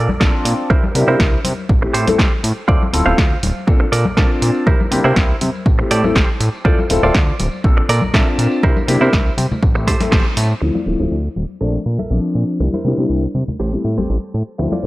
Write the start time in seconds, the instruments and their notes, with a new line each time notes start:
0.09 analog synth bass A#1, tambourine, high conga
0.20 analog synth bass A#1, grand piano C4 D4 F4 A5, clean electric guitar A4 A#4 D5, kick, snare, tambourine
0.33 tambourine
0.45 analog synth bass A#2, muted clean electric guitar stroke, open hi-hat, tambourine
0.58 tambourine
0.70 analog synth bass C2, grand piano A#3 E4 G4, clean electric guitar E4 A#4 C5, kick, tambourine
0.84 tambourine, high conga
0.94 analog synth bass C3, grand piano A#3 D4 E4 G4, muted clean electric guitar stroke, open hi-hat, tambourine
1.08 analog synth bass C3, grand piano A#3 D4 E4 G4, clean electric guitar E4 A#4 C5, tambourine
1.20 analog synth bass C2, kick, snare
1.33 tambourine
1.44 analog synth bass C3, open hi-hat, tambourine, high conga
1.58 tambourine
1.69 analog synth bass A1, muted clean electric guitar stroke, kick
1.82 grand piano A3 C4 E4 G4, muted clean electric guitar stroke
1.93 analog synth bass A2, clean electric guitar G4 A4 C5, open hi-hat, tambourine
2.07 analog synth bass A1, grand piano A3 C4 E4 A4, open hi-hat, tambourine, high conga
2.18 analog synth bass A1, clean electric guitar G4 A4 C5, kick, snare
2.34 tambourine
2.43 analog synth bass A2, muted clean electric guitar stroke, open hi-hat, tambourine
2.58 tambourine
2.68 analog synth bass D2, grand piano C4 E4 F4 A4, clean electric guitar F4 C5 D5, kick, tambourine
2.82 tambourine, high conga
2.93 analog synth bass D1, grand piano C4 E4 F4 A4, muted clean electric guitar stroke, open hi-hat, tambourine
3.06 analog synth bass D1, grand piano C4 E4 F4 A4, clean electric guitar F4 C5 F5, tambourine
3.18 analog synth bass D2, kick, snare
3.31 tambourine
3.43 analog synth bass D1, open hi-hat, tambourine, high conga
3.57 tambourine
3.67 analog synth bass A#1, grand piano C4 D4 F4 A4, muted clean electric guitar stroke, kick, tambourine
3.80 muted clean electric guitar stroke
3.92 analog synth bass A#2, clean electric guitar A4 A#4 D5, open hi-hat, tambourine
4.05 analog synth bass A#1, tambourine, high conga
4.17 analog synth bass A#1, grand piano C4 D4 F4 A5, clean electric guitar A4 A#4 D5, kick, snare, tambourine
4.31 tambourine
4.42 analog synth bass A#2, muted clean electric guitar stroke, open hi-hat, tambourine
4.55 tambourine
4.67 analog synth bass C2, grand piano A#3 D4 G4, clean electric guitar E4 A#4 C5, kick, tambourine
4.80 tambourine, high conga
4.91 analog synth bass C3, grand piano A#3 D4 E4 G4, muted clean electric guitar stroke, open hi-hat, tambourine
5.04 analog synth bass C3, grand piano A#3 D4 E4 G4, clean electric guitar E4 A#4 C5, tambourine
5.16 analog synth bass C2, kick, snare
5.29 tambourine
5.41 analog synth bass C3, open hi-hat, tambourine, high conga
5.55 tambourine
5.66 analog synth bass A1, muted clean electric guitar stroke, kick, tambourine
5.78 grand piano A3 C4 E4 G4, muted clean electric guitar stroke
5.91 analog synth bass A2, clean electric guitar G4 A4 D5, open hi-hat, tambourine
6.03 analog synth bass A1, grand piano A3 C4 E4 A4, tambourine, high conga
6.15 analog synth bass A1, clean electric guitar G4 A4 C5, kick, snare, tambourine
6.29 tambourine
6.40 analog synth bass A2, muted clean electric guitar stroke, open hi-hat, tambourine
6.54 tambourine
6.65 analog synth bass D2, grand piano C4 E4 F4 A4, clean electric guitar F4 C5 D5, kick
6.78 tambourine, high conga
6.89 analog synth bass D1, grand piano C4 E4 F4 A4, muted clean electric guitar stroke, open hi-hat, tambourine
7.03 analog synth bass D1, grand piano C4 E4 F4 A4, clean electric guitar F4 C5 D5, tambourine
7.15 analog synth bass D2, kick, snare, tambourine
7.28 tambourine
7.39 analog synth bass D1, open hi-hat, tambourine, high conga
7.52 tambourine
7.64 analog synth bass A#1, grand piano C4 D4 F4 A4, muted clean electric guitar stroke, kick, tambourine
7.77 muted clean electric guitar stroke
7.89 analog synth bass A#2, clean electric guitar A4 A#4 D5, open hi-hat, tambourine
8.02 analog synth bass A#1, tambourine, high conga
8.14 analog synth bass A#1, grand piano C4 D4 F4 A5, clean electric guitar A4 A#4 E5, kick, snare
8.27 tambourine
8.38 analog synth bass A#2, muted clean electric guitar stroke, open hi-hat, tambourine
8.51 tambourine
8.63 analog synth bass C2, grand piano A#3 D4 E4 G4, clean electric guitar E4 A#4 C5, kick, tambourine
8.77 tambourine, high conga
8.87 analog synth bass C3, grand piano A#3 D4 E4 G4, muted clean electric guitar stroke, open hi-hat, tambourine
9.01 analog synth bass C3, grand piano A#3 D4 E4 G4, clean electric guitar E4 A#4 C5, tambourine
9.13 analog synth bass C2, kick, snare, tambourine
9.26 tambourine
9.38 analog synth bass C3, open hi-hat, tambourine, high conga
9.51 tambourine, low conga
9.62 analog synth bass A1, muted clean electric guitar stroke, kick, tambourine
9.75 grand piano A3 C4 E4 G4, muted clean electric guitar stroke, tambourine
9.87 analog synth bass A2, clean electric guitar G4 A4 C5, kick, open hi-hat, tambourine
10.00 analog synth bass A1, grand piano A3 C4 E4 A4, snare, open hi-hat, tambourine, high conga
10.12 analog synth bass A1, clean electric guitar G4 A4 C5, kick, snare, tambourine
10.25 tambourine
10.37 analog synth bass A2, muted clean electric guitar stroke, open hi-hat, tambourine
10.50 tambourine
10.61 analog synth bass D2, grand piano F3 A3 C4 E4, muted clean electric guitar stroke
10.74 clean electric guitar F4 C5 D5, tambourine, high conga
10.86 analog synth bass D1, grand piano F3 A3 C4 E4, tambourine
10.99 analog synth bass D1, grand piano F3 A3 C4 E4, tambourine
11.11 analog synth bass D2, tambourine
11.24 muted clean electric guitar stroke, tambourine
11.36 analog synth bass D1, tambourine, high conga
11.50 tambourine
11.61 analog synth bass A#1, grand piano F3 A3 C4 D4, clean electric guitar A4 A#4 D5, tambourine
11.86 analog synth bass A#2, muted clean electric guitar stroke, tambourine
11.99 analog synth bass A#1, clean electric guitar A4 A#4 E5, tambourine, high conga
12.10 analog synth bass A#1, grand piano F3 C4 D4, tambourine
12.35 analog synth bass A#2, muted clean electric guitar stroke, tambourine
12.60 analog synth bass C2, grand piano G3 A#3 D4 E4, muted clean electric guitar stroke
12.73 clean electric guitar E4 A#4 C5, tambourine, high conga
12.85 analog synth bass C3, grand piano G3 A#3 D4 E4, tambourine
12.97 analog synth bass C3, grand piano G3 A#3 D4 E4, tambourine
13.10 analog synth bass C2
13.23 muted clean electric guitar stroke
13.35 analog synth bass C3, tambourine, high conga
13.48 tambourine, low conga
13.60 analog synth bass A1, clean electric guitar G4 A4 C5
13.72 grand piano G3 A3 C4 E4
13.84 analog synth bass A2, muted clean electric guitar stroke, tambourine
13.97 analog synth bass A1, grand piano G3 A3 C4 G4, clean electric guitar G4 A4 C5, tambourine, high conga
14.10 analog synth bass A1, tambourine
14.23 tambourine
14.34 analog synth bass A2, muted clean electric guitar stroke, tambourine
14.47 tambourine
14.58 analog synth bass D2, grand piano F3 A3 C4 E4, muted clean electric guitar stroke, tambourine
14.71 clean electric guitar F4 C5 D5, tambourine, high conga
14.82 grand piano F3 A3 C4 E4